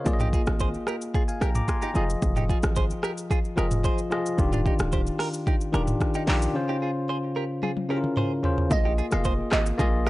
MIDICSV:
0, 0, Header, 1, 6, 480
1, 0, Start_track
1, 0, Tempo, 540541
1, 54, Time_signature, 4, 2, 24, 8
1, 8966, End_track
2, 0, Start_track
2, 0, Title_t, "Synth pluck"
2, 0, Program_c, 0, 84
2, 7742, Note_on_c, 0, 75, 105
2, 7943, Note_off_c, 0, 75, 0
2, 8109, Note_on_c, 0, 77, 74
2, 8203, Note_off_c, 0, 77, 0
2, 8462, Note_on_c, 0, 75, 85
2, 8565, Note_off_c, 0, 75, 0
2, 8966, End_track
3, 0, Start_track
3, 0, Title_t, "Clean electric guitar"
3, 0, Program_c, 1, 27
3, 183, Note_on_c, 1, 67, 67
3, 191, Note_on_c, 1, 63, 50
3, 243, Note_off_c, 1, 67, 0
3, 249, Note_off_c, 1, 63, 0
3, 300, Note_on_c, 1, 68, 77
3, 307, Note_on_c, 1, 65, 59
3, 364, Note_off_c, 1, 68, 0
3, 369, Note_off_c, 1, 65, 0
3, 539, Note_on_c, 1, 72, 83
3, 545, Note_on_c, 1, 68, 62
3, 603, Note_off_c, 1, 72, 0
3, 608, Note_off_c, 1, 68, 0
3, 779, Note_on_c, 1, 70, 79
3, 787, Note_on_c, 1, 67, 59
3, 844, Note_off_c, 1, 70, 0
3, 849, Note_off_c, 1, 67, 0
3, 1020, Note_on_c, 1, 68, 82
3, 1027, Note_on_c, 1, 65, 63
3, 1084, Note_off_c, 1, 68, 0
3, 1089, Note_off_c, 1, 65, 0
3, 1258, Note_on_c, 1, 70, 77
3, 1265, Note_on_c, 1, 67, 62
3, 1322, Note_off_c, 1, 70, 0
3, 1328, Note_off_c, 1, 67, 0
3, 1622, Note_on_c, 1, 67, 75
3, 1629, Note_on_c, 1, 63, 59
3, 1682, Note_off_c, 1, 67, 0
3, 1687, Note_off_c, 1, 63, 0
3, 1738, Note_on_c, 1, 68, 76
3, 1745, Note_on_c, 1, 65, 64
3, 1802, Note_off_c, 1, 68, 0
3, 1808, Note_off_c, 1, 65, 0
3, 2101, Note_on_c, 1, 67, 76
3, 2109, Note_on_c, 1, 63, 61
3, 2161, Note_off_c, 1, 67, 0
3, 2167, Note_off_c, 1, 63, 0
3, 2217, Note_on_c, 1, 68, 79
3, 2223, Note_on_c, 1, 65, 61
3, 2282, Note_off_c, 1, 68, 0
3, 2287, Note_off_c, 1, 65, 0
3, 2456, Note_on_c, 1, 72, 71
3, 2463, Note_on_c, 1, 68, 58
3, 2521, Note_off_c, 1, 72, 0
3, 2527, Note_off_c, 1, 68, 0
3, 2696, Note_on_c, 1, 70, 83
3, 2704, Note_on_c, 1, 67, 66
3, 2762, Note_off_c, 1, 70, 0
3, 2767, Note_off_c, 1, 67, 0
3, 2938, Note_on_c, 1, 68, 92
3, 2945, Note_on_c, 1, 65, 68
3, 3003, Note_off_c, 1, 68, 0
3, 3008, Note_off_c, 1, 65, 0
3, 3177, Note_on_c, 1, 70, 85
3, 3184, Note_on_c, 1, 67, 69
3, 3242, Note_off_c, 1, 70, 0
3, 3248, Note_off_c, 1, 67, 0
3, 3418, Note_on_c, 1, 72, 83
3, 3425, Note_on_c, 1, 68, 63
3, 3543, Note_off_c, 1, 72, 0
3, 3548, Note_off_c, 1, 68, 0
3, 4021, Note_on_c, 1, 65, 68
3, 4029, Note_on_c, 1, 62, 53
3, 4082, Note_off_c, 1, 65, 0
3, 4087, Note_off_c, 1, 62, 0
3, 4137, Note_on_c, 1, 67, 80
3, 4144, Note_on_c, 1, 63, 60
3, 4202, Note_off_c, 1, 67, 0
3, 4207, Note_off_c, 1, 63, 0
3, 4376, Note_on_c, 1, 72, 79
3, 4383, Note_on_c, 1, 67, 61
3, 4442, Note_off_c, 1, 72, 0
3, 4447, Note_off_c, 1, 67, 0
3, 4615, Note_on_c, 1, 70, 78
3, 4623, Note_on_c, 1, 67, 62
3, 4681, Note_off_c, 1, 70, 0
3, 4687, Note_off_c, 1, 67, 0
3, 4856, Note_on_c, 1, 67, 82
3, 4864, Note_on_c, 1, 63, 65
3, 4922, Note_off_c, 1, 67, 0
3, 4927, Note_off_c, 1, 63, 0
3, 5097, Note_on_c, 1, 70, 83
3, 5104, Note_on_c, 1, 67, 62
3, 5162, Note_off_c, 1, 70, 0
3, 5167, Note_off_c, 1, 67, 0
3, 5462, Note_on_c, 1, 67, 74
3, 5469, Note_on_c, 1, 63, 60
3, 5522, Note_off_c, 1, 67, 0
3, 5527, Note_off_c, 1, 63, 0
3, 5577, Note_on_c, 1, 70, 84
3, 5584, Note_on_c, 1, 67, 60
3, 5642, Note_off_c, 1, 70, 0
3, 5647, Note_off_c, 1, 67, 0
3, 5942, Note_on_c, 1, 67, 80
3, 5949, Note_on_c, 1, 63, 61
3, 6002, Note_off_c, 1, 67, 0
3, 6007, Note_off_c, 1, 63, 0
3, 6057, Note_on_c, 1, 68, 78
3, 6065, Note_on_c, 1, 65, 60
3, 6122, Note_off_c, 1, 68, 0
3, 6128, Note_off_c, 1, 65, 0
3, 6299, Note_on_c, 1, 72, 74
3, 6305, Note_on_c, 1, 68, 60
3, 6363, Note_off_c, 1, 72, 0
3, 6368, Note_off_c, 1, 68, 0
3, 6537, Note_on_c, 1, 70, 85
3, 6544, Note_on_c, 1, 67, 66
3, 6602, Note_off_c, 1, 70, 0
3, 6607, Note_off_c, 1, 67, 0
3, 6777, Note_on_c, 1, 68, 90
3, 6784, Note_on_c, 1, 65, 69
3, 6842, Note_off_c, 1, 68, 0
3, 6847, Note_off_c, 1, 65, 0
3, 7017, Note_on_c, 1, 70, 85
3, 7024, Note_on_c, 1, 67, 65
3, 7082, Note_off_c, 1, 70, 0
3, 7087, Note_off_c, 1, 67, 0
3, 7258, Note_on_c, 1, 72, 80
3, 7265, Note_on_c, 1, 68, 66
3, 7383, Note_off_c, 1, 72, 0
3, 7388, Note_off_c, 1, 68, 0
3, 7862, Note_on_c, 1, 67, 68
3, 7869, Note_on_c, 1, 63, 53
3, 7922, Note_off_c, 1, 67, 0
3, 7927, Note_off_c, 1, 63, 0
3, 7977, Note_on_c, 1, 68, 79
3, 7984, Note_on_c, 1, 65, 59
3, 8042, Note_off_c, 1, 68, 0
3, 8047, Note_off_c, 1, 65, 0
3, 8215, Note_on_c, 1, 72, 88
3, 8223, Note_on_c, 1, 68, 69
3, 8281, Note_off_c, 1, 72, 0
3, 8286, Note_off_c, 1, 68, 0
3, 8458, Note_on_c, 1, 70, 79
3, 8465, Note_on_c, 1, 67, 62
3, 8522, Note_off_c, 1, 70, 0
3, 8528, Note_off_c, 1, 67, 0
3, 8697, Note_on_c, 1, 68, 84
3, 8704, Note_on_c, 1, 65, 69
3, 8762, Note_off_c, 1, 68, 0
3, 8767, Note_off_c, 1, 65, 0
3, 8938, Note_on_c, 1, 70, 77
3, 8966, Note_off_c, 1, 70, 0
3, 8966, End_track
4, 0, Start_track
4, 0, Title_t, "Tine electric piano"
4, 0, Program_c, 2, 4
4, 0, Control_c, 2, 64, 127
4, 0, Note_on_c, 2, 70, 55
4, 0, Note_on_c, 2, 73, 63
4, 41, Note_on_c, 2, 58, 81
4, 48, Note_on_c, 2, 65, 80
4, 55, Note_on_c, 2, 68, 79
4, 63, Note_on_c, 2, 74, 75
4, 65, Control_c, 2, 64, 0
4, 118, Note_off_c, 2, 74, 0
4, 121, Note_on_c, 2, 75, 96
4, 166, Note_off_c, 2, 73, 0
4, 170, Note_off_c, 2, 70, 0
4, 223, Control_c, 2, 64, 127
4, 728, Note_off_c, 2, 58, 0
4, 731, Note_off_c, 2, 65, 0
4, 735, Note_off_c, 2, 68, 0
4, 768, Note_off_c, 2, 75, 0
4, 1138, Note_on_c, 2, 80, 64
4, 1143, Note_on_c, 2, 77, 55
4, 1248, Note_off_c, 2, 80, 0
4, 1251, Note_off_c, 2, 77, 0
4, 1255, Note_on_c, 2, 82, 71
4, 1260, Note_on_c, 2, 79, 62
4, 1373, Note_off_c, 2, 82, 0
4, 1375, Note_off_c, 2, 79, 0
4, 1379, Note_on_c, 2, 86, 70
4, 1385, Note_on_c, 2, 82, 62
4, 1488, Note_off_c, 2, 86, 0
4, 1491, Note_off_c, 2, 82, 0
4, 1492, Note_on_c, 2, 84, 68
4, 1496, Note_on_c, 2, 80, 59
4, 1612, Note_off_c, 2, 84, 0
4, 1614, Note_off_c, 2, 80, 0
4, 1616, Note_on_c, 2, 82, 64
4, 1621, Note_on_c, 2, 79, 55
4, 1721, Note_on_c, 2, 53, 86
4, 1730, Note_on_c, 2, 65, 82
4, 1737, Note_on_c, 2, 68, 81
4, 1743, Note_on_c, 2, 75, 98
4, 1745, Control_c, 2, 64, 0
4, 1845, Note_off_c, 2, 82, 0
4, 1848, Note_off_c, 2, 79, 0
4, 1879, Control_c, 2, 64, 127
4, 2498, Note_off_c, 2, 53, 0
4, 2502, Note_off_c, 2, 65, 0
4, 2505, Note_off_c, 2, 68, 0
4, 2509, Note_off_c, 2, 75, 0
4, 3161, Note_on_c, 2, 53, 78
4, 3168, Note_on_c, 2, 65, 72
4, 3176, Note_on_c, 2, 68, 73
4, 3184, Note_on_c, 2, 75, 85
4, 3511, Note_off_c, 2, 53, 0
4, 3514, Note_off_c, 2, 65, 0
4, 3518, Note_off_c, 2, 68, 0
4, 3523, Note_off_c, 2, 75, 0
4, 3642, Note_on_c, 2, 53, 85
4, 3649, Note_on_c, 2, 65, 81
4, 3658, Note_on_c, 2, 68, 76
4, 3664, Note_on_c, 2, 75, 94
4, 3821, Note_off_c, 2, 53, 0
4, 3824, Note_off_c, 2, 65, 0
4, 3828, Note_off_c, 2, 68, 0
4, 3831, Note_off_c, 2, 75, 0
4, 3883, Note_on_c, 2, 51, 90
4, 3890, Note_on_c, 2, 62, 81
4, 3897, Note_on_c, 2, 65, 81
4, 3904, Note_on_c, 2, 67, 94
4, 3907, Control_c, 2, 64, 0
4, 4074, Control_c, 2, 64, 127
4, 4569, Note_off_c, 2, 51, 0
4, 4572, Note_off_c, 2, 62, 0
4, 4576, Note_off_c, 2, 65, 0
4, 4580, Note_off_c, 2, 67, 0
4, 5082, Note_on_c, 2, 51, 82
4, 5089, Note_on_c, 2, 62, 73
4, 5097, Note_on_c, 2, 65, 70
4, 5104, Note_on_c, 2, 67, 87
4, 5431, Note_off_c, 2, 51, 0
4, 5435, Note_off_c, 2, 62, 0
4, 5439, Note_off_c, 2, 65, 0
4, 5442, Note_off_c, 2, 67, 0
4, 5560, Note_on_c, 2, 51, 84
4, 5569, Note_on_c, 2, 62, 77
4, 5576, Note_on_c, 2, 65, 82
4, 5584, Note_on_c, 2, 67, 92
4, 5739, Note_off_c, 2, 51, 0
4, 5744, Note_off_c, 2, 62, 0
4, 5748, Note_off_c, 2, 65, 0
4, 5751, Note_off_c, 2, 67, 0
4, 5800, Note_on_c, 2, 49, 84
4, 5808, Note_on_c, 2, 61, 80
4, 5815, Note_on_c, 2, 65, 79
4, 5822, Note_on_c, 2, 72, 98
4, 5825, Control_c, 2, 64, 0
4, 5998, Control_c, 2, 64, 127
4, 6488, Note_off_c, 2, 49, 0
4, 6491, Note_off_c, 2, 61, 0
4, 6495, Note_off_c, 2, 65, 0
4, 6499, Note_off_c, 2, 72, 0
4, 7002, Note_on_c, 2, 49, 80
4, 7010, Note_on_c, 2, 61, 71
4, 7016, Note_on_c, 2, 64, 58
4, 7024, Note_on_c, 2, 70, 88
4, 7075, Note_off_c, 2, 64, 0
4, 7075, Note_on_c, 2, 65, 73
4, 7352, Note_off_c, 2, 49, 0
4, 7355, Note_off_c, 2, 61, 0
4, 7363, Note_off_c, 2, 70, 0
4, 7388, Note_off_c, 2, 65, 0
4, 7483, Note_on_c, 2, 49, 85
4, 7490, Note_on_c, 2, 61, 77
4, 7498, Note_on_c, 2, 65, 75
4, 7506, Note_on_c, 2, 72, 91
4, 7661, Note_off_c, 2, 49, 0
4, 7665, Note_off_c, 2, 61, 0
4, 7668, Note_off_c, 2, 65, 0
4, 7672, Note_off_c, 2, 72, 0
4, 7722, Note_on_c, 2, 58, 74
4, 7731, Note_on_c, 2, 65, 70
4, 7738, Note_on_c, 2, 68, 67
4, 7746, Control_c, 2, 64, 0
4, 7746, Note_on_c, 2, 75, 83
4, 7885, Control_c, 2, 64, 127
4, 7983, Note_off_c, 2, 58, 0
4, 7988, Note_off_c, 2, 65, 0
4, 7991, Note_off_c, 2, 68, 0
4, 7995, Note_off_c, 2, 75, 0
4, 8088, Note_on_c, 2, 58, 76
4, 8096, Note_on_c, 2, 65, 72
4, 8102, Note_on_c, 2, 68, 68
4, 8109, Note_on_c, 2, 75, 84
4, 8515, Note_off_c, 2, 58, 0
4, 8519, Note_off_c, 2, 65, 0
4, 8522, Note_off_c, 2, 68, 0
4, 8526, Note_off_c, 2, 75, 0
4, 8680, Note_on_c, 2, 58, 99
4, 8688, Note_on_c, 2, 65, 90
4, 8696, Note_on_c, 2, 68, 85
4, 8702, Note_on_c, 2, 75, 108
4, 8966, Note_off_c, 2, 58, 0
4, 8966, Note_off_c, 2, 65, 0
4, 8966, Note_off_c, 2, 68, 0
4, 8966, Note_off_c, 2, 75, 0
4, 8966, End_track
5, 0, Start_track
5, 0, Title_t, "808-style bass"
5, 0, Program_c, 3, 38
5, 55, Note_on_c, 3, 34, 104
5, 326, Note_off_c, 3, 34, 0
5, 419, Note_on_c, 3, 32, 92
5, 684, Note_off_c, 3, 32, 0
5, 1255, Note_on_c, 3, 34, 90
5, 1433, Note_off_c, 3, 34, 0
5, 1734, Note_on_c, 3, 29, 104
5, 1913, Note_off_c, 3, 29, 0
5, 1975, Note_on_c, 3, 29, 105
5, 2247, Note_off_c, 3, 29, 0
5, 2338, Note_on_c, 3, 32, 91
5, 2603, Note_off_c, 3, 32, 0
5, 3174, Note_on_c, 3, 29, 92
5, 3446, Note_off_c, 3, 29, 0
5, 3894, Note_on_c, 3, 27, 114
5, 4166, Note_off_c, 3, 27, 0
5, 4257, Note_on_c, 3, 26, 86
5, 4523, Note_off_c, 3, 26, 0
5, 5093, Note_on_c, 3, 27, 97
5, 5272, Note_off_c, 3, 27, 0
5, 5571, Note_on_c, 3, 34, 94
5, 5751, Note_off_c, 3, 34, 0
5, 7735, Note_on_c, 3, 34, 112
5, 8007, Note_off_c, 3, 34, 0
5, 8102, Note_on_c, 3, 29, 89
5, 8365, Note_off_c, 3, 29, 0
5, 8455, Note_on_c, 3, 32, 92
5, 8633, Note_off_c, 3, 32, 0
5, 8697, Note_on_c, 3, 34, 98
5, 8966, Note_off_c, 3, 34, 0
5, 8966, End_track
6, 0, Start_track
6, 0, Title_t, "Drums"
6, 52, Note_on_c, 9, 82, 73
6, 55, Note_on_c, 9, 36, 110
6, 141, Note_off_c, 9, 82, 0
6, 144, Note_off_c, 9, 36, 0
6, 175, Note_on_c, 9, 45, 95
6, 179, Note_on_c, 9, 82, 56
6, 264, Note_off_c, 9, 45, 0
6, 267, Note_off_c, 9, 82, 0
6, 295, Note_on_c, 9, 36, 90
6, 297, Note_on_c, 9, 82, 52
6, 384, Note_off_c, 9, 36, 0
6, 385, Note_off_c, 9, 82, 0
6, 414, Note_on_c, 9, 82, 75
6, 422, Note_on_c, 9, 37, 100
6, 502, Note_off_c, 9, 82, 0
6, 511, Note_off_c, 9, 37, 0
6, 530, Note_on_c, 9, 82, 82
6, 536, Note_on_c, 9, 36, 92
6, 619, Note_off_c, 9, 82, 0
6, 625, Note_off_c, 9, 36, 0
6, 659, Note_on_c, 9, 82, 54
6, 748, Note_off_c, 9, 82, 0
6, 771, Note_on_c, 9, 37, 92
6, 778, Note_on_c, 9, 82, 52
6, 860, Note_off_c, 9, 37, 0
6, 867, Note_off_c, 9, 82, 0
6, 902, Note_on_c, 9, 82, 94
6, 991, Note_off_c, 9, 82, 0
6, 1017, Note_on_c, 9, 36, 110
6, 1019, Note_on_c, 9, 82, 68
6, 1106, Note_off_c, 9, 36, 0
6, 1108, Note_off_c, 9, 82, 0
6, 1140, Note_on_c, 9, 82, 56
6, 1229, Note_off_c, 9, 82, 0
6, 1258, Note_on_c, 9, 82, 55
6, 1259, Note_on_c, 9, 37, 86
6, 1347, Note_off_c, 9, 82, 0
6, 1348, Note_off_c, 9, 37, 0
6, 1377, Note_on_c, 9, 82, 81
6, 1378, Note_on_c, 9, 45, 98
6, 1466, Note_off_c, 9, 45, 0
6, 1466, Note_off_c, 9, 82, 0
6, 1493, Note_on_c, 9, 36, 95
6, 1494, Note_on_c, 9, 82, 76
6, 1501, Note_on_c, 9, 37, 90
6, 1582, Note_off_c, 9, 36, 0
6, 1582, Note_off_c, 9, 82, 0
6, 1590, Note_off_c, 9, 37, 0
6, 1615, Note_on_c, 9, 82, 54
6, 1704, Note_off_c, 9, 82, 0
6, 1732, Note_on_c, 9, 82, 49
6, 1820, Note_off_c, 9, 82, 0
6, 1863, Note_on_c, 9, 82, 83
6, 1952, Note_off_c, 9, 82, 0
6, 1973, Note_on_c, 9, 82, 74
6, 1975, Note_on_c, 9, 36, 116
6, 2061, Note_off_c, 9, 82, 0
6, 2063, Note_off_c, 9, 36, 0
6, 2096, Note_on_c, 9, 45, 95
6, 2099, Note_on_c, 9, 82, 55
6, 2184, Note_off_c, 9, 45, 0
6, 2188, Note_off_c, 9, 82, 0
6, 2215, Note_on_c, 9, 36, 91
6, 2218, Note_on_c, 9, 82, 55
6, 2304, Note_off_c, 9, 36, 0
6, 2306, Note_off_c, 9, 82, 0
6, 2335, Note_on_c, 9, 82, 79
6, 2343, Note_on_c, 9, 37, 100
6, 2423, Note_off_c, 9, 82, 0
6, 2431, Note_off_c, 9, 37, 0
6, 2450, Note_on_c, 9, 82, 81
6, 2456, Note_on_c, 9, 36, 91
6, 2539, Note_off_c, 9, 82, 0
6, 2545, Note_off_c, 9, 36, 0
6, 2579, Note_on_c, 9, 82, 53
6, 2668, Note_off_c, 9, 82, 0
6, 2691, Note_on_c, 9, 37, 88
6, 2698, Note_on_c, 9, 82, 51
6, 2780, Note_off_c, 9, 37, 0
6, 2787, Note_off_c, 9, 82, 0
6, 2821, Note_on_c, 9, 82, 92
6, 2910, Note_off_c, 9, 82, 0
6, 2936, Note_on_c, 9, 36, 107
6, 2938, Note_on_c, 9, 82, 64
6, 3025, Note_off_c, 9, 36, 0
6, 3027, Note_off_c, 9, 82, 0
6, 3061, Note_on_c, 9, 82, 57
6, 3150, Note_off_c, 9, 82, 0
6, 3177, Note_on_c, 9, 37, 88
6, 3177, Note_on_c, 9, 82, 57
6, 3266, Note_off_c, 9, 37, 0
6, 3266, Note_off_c, 9, 82, 0
6, 3296, Note_on_c, 9, 45, 100
6, 3296, Note_on_c, 9, 82, 85
6, 3385, Note_off_c, 9, 45, 0
6, 3385, Note_off_c, 9, 82, 0
6, 3413, Note_on_c, 9, 36, 94
6, 3413, Note_on_c, 9, 82, 75
6, 3501, Note_off_c, 9, 36, 0
6, 3501, Note_off_c, 9, 82, 0
6, 3536, Note_on_c, 9, 82, 56
6, 3625, Note_off_c, 9, 82, 0
6, 3653, Note_on_c, 9, 82, 48
6, 3661, Note_on_c, 9, 37, 98
6, 3741, Note_off_c, 9, 82, 0
6, 3750, Note_off_c, 9, 37, 0
6, 3783, Note_on_c, 9, 82, 91
6, 3872, Note_off_c, 9, 82, 0
6, 3893, Note_on_c, 9, 82, 71
6, 3894, Note_on_c, 9, 36, 113
6, 3982, Note_off_c, 9, 82, 0
6, 3983, Note_off_c, 9, 36, 0
6, 4015, Note_on_c, 9, 45, 93
6, 4019, Note_on_c, 9, 82, 58
6, 4104, Note_off_c, 9, 45, 0
6, 4108, Note_off_c, 9, 82, 0
6, 4135, Note_on_c, 9, 36, 91
6, 4138, Note_on_c, 9, 82, 55
6, 4223, Note_off_c, 9, 36, 0
6, 4226, Note_off_c, 9, 82, 0
6, 4253, Note_on_c, 9, 82, 76
6, 4261, Note_on_c, 9, 37, 105
6, 4342, Note_off_c, 9, 82, 0
6, 4350, Note_off_c, 9, 37, 0
6, 4370, Note_on_c, 9, 82, 84
6, 4375, Note_on_c, 9, 36, 93
6, 4459, Note_off_c, 9, 82, 0
6, 4464, Note_off_c, 9, 36, 0
6, 4498, Note_on_c, 9, 82, 55
6, 4587, Note_off_c, 9, 82, 0
6, 4609, Note_on_c, 9, 37, 89
6, 4616, Note_on_c, 9, 46, 72
6, 4616, Note_on_c, 9, 82, 53
6, 4698, Note_off_c, 9, 37, 0
6, 4705, Note_off_c, 9, 46, 0
6, 4705, Note_off_c, 9, 82, 0
6, 4738, Note_on_c, 9, 82, 91
6, 4827, Note_off_c, 9, 82, 0
6, 4856, Note_on_c, 9, 36, 119
6, 4858, Note_on_c, 9, 82, 68
6, 4944, Note_off_c, 9, 36, 0
6, 4947, Note_off_c, 9, 82, 0
6, 4979, Note_on_c, 9, 82, 58
6, 5068, Note_off_c, 9, 82, 0
6, 5096, Note_on_c, 9, 37, 93
6, 5096, Note_on_c, 9, 82, 54
6, 5185, Note_off_c, 9, 37, 0
6, 5185, Note_off_c, 9, 82, 0
6, 5216, Note_on_c, 9, 45, 95
6, 5216, Note_on_c, 9, 82, 85
6, 5304, Note_off_c, 9, 82, 0
6, 5305, Note_off_c, 9, 45, 0
6, 5332, Note_on_c, 9, 36, 92
6, 5333, Note_on_c, 9, 82, 76
6, 5340, Note_on_c, 9, 37, 91
6, 5421, Note_off_c, 9, 36, 0
6, 5422, Note_off_c, 9, 82, 0
6, 5429, Note_off_c, 9, 37, 0
6, 5454, Note_on_c, 9, 82, 53
6, 5542, Note_off_c, 9, 82, 0
6, 5571, Note_on_c, 9, 46, 66
6, 5571, Note_on_c, 9, 82, 50
6, 5579, Note_on_c, 9, 39, 105
6, 5660, Note_off_c, 9, 46, 0
6, 5660, Note_off_c, 9, 82, 0
6, 5668, Note_off_c, 9, 39, 0
6, 5701, Note_on_c, 9, 82, 89
6, 5790, Note_off_c, 9, 82, 0
6, 6773, Note_on_c, 9, 48, 59
6, 6862, Note_off_c, 9, 48, 0
6, 6898, Note_on_c, 9, 48, 57
6, 6987, Note_off_c, 9, 48, 0
6, 7138, Note_on_c, 9, 47, 73
6, 7227, Note_off_c, 9, 47, 0
6, 7254, Note_on_c, 9, 45, 84
6, 7343, Note_off_c, 9, 45, 0
6, 7494, Note_on_c, 9, 43, 101
6, 7582, Note_off_c, 9, 43, 0
6, 7619, Note_on_c, 9, 43, 97
6, 7708, Note_off_c, 9, 43, 0
6, 7734, Note_on_c, 9, 36, 117
6, 7734, Note_on_c, 9, 82, 79
6, 7822, Note_off_c, 9, 82, 0
6, 7823, Note_off_c, 9, 36, 0
6, 7977, Note_on_c, 9, 82, 58
6, 8066, Note_off_c, 9, 82, 0
6, 8094, Note_on_c, 9, 82, 65
6, 8102, Note_on_c, 9, 37, 103
6, 8183, Note_off_c, 9, 82, 0
6, 8191, Note_off_c, 9, 37, 0
6, 8209, Note_on_c, 9, 82, 82
6, 8215, Note_on_c, 9, 36, 98
6, 8298, Note_off_c, 9, 82, 0
6, 8304, Note_off_c, 9, 36, 0
6, 8450, Note_on_c, 9, 37, 97
6, 8450, Note_on_c, 9, 39, 92
6, 8457, Note_on_c, 9, 82, 54
6, 8538, Note_off_c, 9, 37, 0
6, 8538, Note_off_c, 9, 39, 0
6, 8545, Note_off_c, 9, 82, 0
6, 8579, Note_on_c, 9, 82, 81
6, 8668, Note_off_c, 9, 82, 0
6, 8696, Note_on_c, 9, 36, 114
6, 8697, Note_on_c, 9, 82, 68
6, 8785, Note_off_c, 9, 36, 0
6, 8786, Note_off_c, 9, 82, 0
6, 8938, Note_on_c, 9, 82, 60
6, 8939, Note_on_c, 9, 37, 93
6, 8966, Note_off_c, 9, 37, 0
6, 8966, Note_off_c, 9, 82, 0
6, 8966, End_track
0, 0, End_of_file